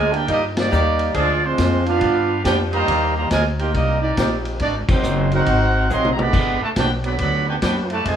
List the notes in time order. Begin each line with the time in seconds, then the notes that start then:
Already playing: D2 G#3 F4 A#4 D5 G#5
0.12 A#3 D4 D#4 G4 A#4 D5 G5, ride
0.28 G2 G3 A#3 D4 D#4 G4 D#5, kick, ride
0.56 G3 A#3 D#4 G4 D5, snare, ride
0.70 D#2 D#3 A#3 G4 D5, hi-hat pedal
0.99 ride
1.14 D2 F3 G#3 C4 D4 F4 G#4 D5, kick, ride
1.44 F3 G#3 C4 D4 F4 C5
1.58 F2, kick, snare, hi-hat pedal, ride
1.86 B3 D4 F4 G4 B4 F5, ride
2.01 G2, kick, ride
2.44 F2 F3 B3 D4 F4 G4 B4 D5 G5, kick, snare, hi-hat pedal, ride
2.72 D#3 G3 A#3 G4 C5 D#5 A#5, ride
2.88 D#2, kick, ride
3.16 D#3 G3 A#3 G4 C5 D#5 A#5
3.31 D2 G#3 F4 A#4 D5 G#5, kick, snare, hi-hat pedal, ride
3.58 A#3 D#4 G4 A#4 C5 G5, ride
3.74 C2 G3 A#3 C4 D#4 G4 A#4 D#5, kick, ride
4.02 A#3 D#4 G4 D5
4.17 A#1 D#3 A#3 C4 G4, kick, snare, hi-hat pedal, ride
4.45 ride
4.59 G#1 A#3 D4 D#4 F#4 D5, kick, ride
4.89 D#3 F#3 A#3 C4 D#4 F#4 C5, kick, crash
5.03 F#1, hi-hat pedal
5.31 C4 D#4 F#4 A#4 C5 F#5, ride
5.46 G#1, kick, ride
5.89 A#1 D#3 F#3 A#3 C4 G#4 A#4 D#5 F#5 C6, hi-hat pedal
6.05 mid tom
6.11 A#5
6.18 D3 G#3 B3 G4 D5 F#5 B5, mid tom
6.33 G1, kick, crash
6.62 A3 F#4 B4 D5 A5, muted upright bass stroke
6.76 B1 B3 D4 F#4 G4 B4 G5, kick, snare, hi-hat pedal, ride
7.04 D3 F#3 B3 G4 D5 F#5 B5, ride
7.18 D2 D3 F#3 B3 G4 D5 F#5 B5, kick, ride
7.48 B3 D4 F#4 G4 B4 G5
7.61 F#2 B3 D4 F#4 G4 B4 G5, kick, snare, hi-hat pedal, ride
7.90 A3 F#4 B4 D5 A5, ride
8.05 F2 C3 D#3 G#3 F4 C5 D#5 G#5, kick, ride